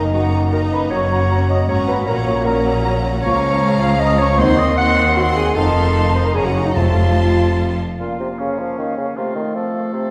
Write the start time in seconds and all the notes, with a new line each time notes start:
Already playing: F#1 F#2 A#3 D#4 D#5 A#5
0.04 A#4 A#5
0.13 D#3 D#4 F#4 D#5 F#5 A#5
0.34 D#3 A#5
0.51 D#3 D#4 A#4 D#5 A#5
0.71 D#3 B4 A#5 B5
0.90 F#1 F#2 F#3 C#4 F#4 C#5 F#5 A#5 C#6
1.10 F#3 A#5
1.31 F#3 A#5
1.50 F#3 D#5 A#5 D#6
1.68 G#1 G#2 F#3 C#4 C#5 F#5 A#5 C#6
1.88 F#3 B4 A#5 B5
2.07 A#1 A#2 F#3 A#3 C#4 A#4 F#5 A#5
2.16 C#5 C#6
2.27 F#3 A#5
2.36 C#5 C#6
2.45 F#3 C#4 A#4 F#5 A#5
2.66 F#3 A#5
2.86 F#3 A#5
3.04 F#3 A#5
3.22 C#2 F3 A#3 C#4 F4 C#5 F5 A#5 C#6
3.80 F5 F6
3.99 D#5 D#6
4.18 C#5 C#6
4.38 D#2 D#3 C4 D#4 C5 F#5 C6
4.57 D#5 D#6
4.77 C4 F#5 C6 F#6
5.15 C4 F#4 F#5 C6
5.35 G#4 G#5
5.55 F1 F2 D#3 C4 D#4 A4 F5 A5 C6
6.15 C5 C6
6.24 A#4 A#5
6.34 F#1 F#2 C#3 A#3 C#4 G#4 F#5 G#5 A#5
6.44 F#4 F#5
6.56 D#4
6.64 D#4 D#5
6.75 F1 F2 C3 A3 C4 F4 F5 A5 C6
7.98 A#2 A#3 C#4 F4 F5
8.18 C3 C#4 F5
8.38 C#3 C#4 F5
8.57 F3 C#4 F5
8.78 D#3 C#4 F5
8.97 C#3 C#4 F5
9.16 C3 A3 C4 F4 F5
9.35 D#3 C4 F5
9.55 F3 C4 A4 F5
9.74 C4 F5
9.93 C3 C4 F5